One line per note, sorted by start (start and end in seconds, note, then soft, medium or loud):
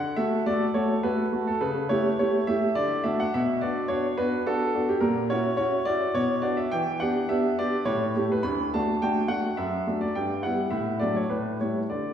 0.00 0.16 D3 medium
0.00 0.16 F#5 medium
0.16 0.38 A3 medium
0.16 0.38 F#4 soft
0.16 0.38 A4 medium
0.16 0.45 E5 medium
0.46 0.67 A3 soft
0.46 0.67 F#4 soft
0.46 0.68 A4 soft
0.46 0.63 D5 medium
0.74 0.95 A3 medium
0.74 0.95 F#4 soft
0.74 0.96 A4 medium
0.74 0.92 C#5 medium
1.03 1.25 A3 soft
1.03 1.25 F#4 medium
1.03 1.25 A4 medium
1.03 1.47 B4 medium
1.32 1.53 A3 soft
1.32 1.53 F#4 soft
1.32 1.46 A4 soft
1.47 1.62 A4 medium
1.61 1.89 C#3 medium
1.61 1.90 B4 medium
1.89 2.11 A3 medium
1.89 2.11 E4 medium
1.89 2.11 G4 medium
1.89 2.07 C#5 medium
2.19 2.40 A3 medium
2.19 2.40 E4 soft
2.19 2.40 G4 soft
2.19 2.48 C#5 medium
2.47 2.68 A3 soft
2.47 2.68 E4 soft
2.47 2.69 G4 medium
2.47 2.76 E5 medium
2.75 3.03 D3 medium
2.75 3.01 D5 medium
3.04 3.25 A3 soft
3.04 3.25 D4 soft
3.04 3.26 F#4 soft
3.04 3.18 E5 medium
3.20 3.34 F#5 medium
3.34 3.61 B2 medium
3.34 3.62 E5 medium
3.61 3.82 B3 medium
3.61 3.82 D4 medium
3.61 3.83 F#4 medium
3.61 3.87 D5 medium
3.88 4.10 B3 soft
3.88 4.10 D4 medium
3.88 4.10 F#4 medium
3.88 4.06 C#5 medium
4.18 4.38 B3 medium
4.18 4.38 D4 medium
4.18 4.38 F#4 medium
4.18 4.46 B4 medium
4.46 4.67 B3 soft
4.46 4.67 D4 medium
4.46 4.67 F#4 medium
4.46 4.85 A4 medium
4.75 4.95 B3 soft
4.75 4.95 D4 soft
4.75 4.95 F#4 soft
4.89 5.03 G4 medium
5.01 5.29 A#2 medium
5.01 5.27 A#4 medium
5.30 5.51 C#4 medium
5.30 5.51 E4 soft
5.30 5.52 F#4 medium
5.30 5.56 C#5 medium
5.57 5.78 C#4 medium
5.57 5.79 E4 medium
5.57 5.79 F#4 medium
5.57 5.86 C#5 medium
5.85 6.07 C#4 soft
5.85 6.07 E4 soft
5.85 6.07 F#4 medium
5.85 6.15 D5 medium
6.14 6.42 B2 medium
6.14 6.43 C#5 medium
6.42 6.64 B3 soft
6.42 6.63 D4 soft
6.42 6.64 F#4 medium
6.42 6.57 D5 medium
6.57 6.72 E5 medium
6.72 7.00 E3 medium
6.72 7.00 G5 medium
7.00 7.21 B3 medium
7.00 7.22 D4 medium
7.00 7.22 G4 medium
7.00 7.29 F#5 medium
7.29 7.50 B3 soft
7.29 7.50 D4 medium
7.29 7.50 G4 medium
7.29 7.58 E5 medium
7.59 7.79 B3 soft
7.59 7.79 D4 soft
7.59 7.80 G4 medium
7.59 7.76 D5 medium
7.85 8.14 A2 medium
7.85 8.25 C#5 medium
8.16 8.36 A3 soft
8.16 8.36 E4 soft
8.16 8.36 G4 soft
8.32 8.45 B4 medium
8.43 8.71 D2 medium
8.43 8.72 B5 medium
8.74 8.94 A3 soft
8.74 8.94 D4 medium
8.74 8.95 F#4 medium
8.74 9.01 A5 medium
9.02 9.22 A3 soft
9.02 9.22 D4 soft
9.02 9.23 F#4 medium
9.02 9.30 G5 medium
9.28 9.49 A3 soft
9.28 9.50 D4 soft
9.28 9.50 F#4 soft
9.28 9.57 F#5 medium
9.57 9.86 F#2 medium
9.57 9.96 E5 medium
9.87 10.07 A3 soft
9.87 10.07 D4 soft
9.87 10.08 F#4 soft
10.01 10.15 D5 medium
10.15 10.43 G2 medium
10.15 10.41 G5 medium
10.43 10.64 G3 soft
10.43 10.64 B3 soft
10.43 10.65 E4 soft
10.43 10.72 F#5 medium
10.70 11.00 A2 medium
10.70 11.00 E5 medium
10.99 11.21 F#3 soft
10.99 11.22 A3 soft
10.99 11.22 D4 soft
10.99 11.15 D5 medium
11.16 11.31 C#5 medium
11.30 11.59 A2 soft
11.30 11.56 B4 medium
11.61 11.82 G3 soft
11.61 11.82 A3 soft
11.61 11.82 E4 soft
11.61 11.78 C#5 medium
11.90 12.13 D3 soft
11.90 12.13 D5 medium